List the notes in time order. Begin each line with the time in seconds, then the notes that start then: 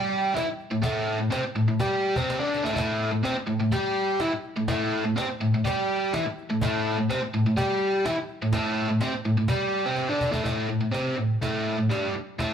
Already playing: G3 G4
0.12 cajon slap
0.33 E3 E4, cajon slap
0.47 muted overdriven electric guitar stroke
0.59 cajon slap
0.71 A2
0.83 A2 A3, cajon bass, cajon slap
1.09 cajon slap
1.19 A2
1.30 C3 C4, cajon slap
1.44 muted overdriven electric guitar stroke
1.56 A2, cajon slap
1.68 A2
1.79 G3 G4, cajon bass, cajon slap
2.04 cajon slap
2.16 C3 C4, cajon bass
2.30 cajon slap
2.39 D3 D4
2.54 cajon slap
2.64 A2 A3, cajon slap
2.74 A2 A3, cajon bass
2.78 cajon slap
3.02 cajon slap
3.12 A2
3.23 C3 C4, cajon slap
3.37 muted overdriven electric guitar stroke
3.47 A2, cajon slap
3.60 A2
3.72 G3 G4, cajon bass, cajon slap
3.96 cajon slap
4.20 E3 E4, cajon slap
4.33 muted overdriven electric guitar stroke
4.43 cajon slap
4.57 A2
4.68 A2 A3, cajon bass, cajon slap
4.93 cajon slap
5.05 A2
5.16 C3 C4, cajon slap
5.28 muted overdriven electric guitar stroke
5.41 A2, cajon slap
5.54 A2
5.65 G3 G4, cajon bass, cajon slap
5.90 cajon slap
6.13 E3 E4, cajon slap
6.26 muted overdriven electric guitar stroke
6.38 cajon slap
6.50 A2
6.61 A2 A3, cajon bass, cajon slap
6.86 cajon slap
6.98 A2
7.09 C3 C4, cajon slap
7.22 muted overdriven electric guitar stroke
7.34 A2, cajon slap
7.46 A2
7.57 G3 G4, cajon bass, cajon slap
7.81 cajon slap
8.05 E3 E4, cajon slap
8.18 muted overdriven electric guitar stroke
8.29 cajon slap
8.42 A2
8.53 A2 A3, cajon bass, cajon slap
8.76 cajon slap
8.89 A2
9.01 C3 C4, cajon slap
9.14 muted overdriven electric guitar stroke
9.25 A2, cajon slap
9.37 A2
9.48 G3 G4, cajon bass, cajon slap
9.72 cajon slap
9.85 C3 C4
9.96 cajon slap
10.09 D3 D4
10.21 cajon bass
10.32 A2 A3, cajon bass
10.44 A2 A3, cajon bass, cajon slap
10.69 A2
10.81 A2
10.91 C3 C4, cajon slap
11.17 A2
11.42 A2 A3, cajon bass, cajon slap
11.78 A2
11.89 G2 G3, cajon slap
12.15 muted overdriven electric guitar stroke
12.39 A2 A3, cajon bass, cajon slap